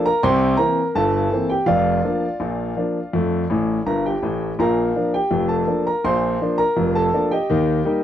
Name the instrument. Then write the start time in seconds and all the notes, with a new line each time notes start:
grand piano
0.06 A#4 A#5
0.23 C2 C3 C5 G5 C6
0.57 E3 A#3 C4 A#4 A#5
0.95 G1 G2 A4 A5
1.32 E3 A#3 C4
1.49 G4 G5
1.66 F1 F2 F4 D5 F5
2.04 F3 A#3 D4
2.40 A#1 A#2
2.76 F3 A#3 D4
3.13 F2 A3
3.50 A1 A2
3.86 G1 G2 A#4 A#5
4.06 G4 G5
4.23 A1 A2
4.59 A#1 A#2 A#4 F5 A#5
4.96 F3 A#3 D4
5.14 G4 G5
5.31 F1 F2
5.49 A4 A5
5.67 F3 A#3 D4
5.87 A#4 A#5
6.05 A#1 A#2 C5 C6
6.41 F3 A#3 D4
6.58 A#4 A#5
6.77 F1 F2
6.95 A4 A5
7.13 F3 A#3 D4
7.32 G4 D#5 G5
7.50 D#2 D#3
7.85 G3 A#3 D#4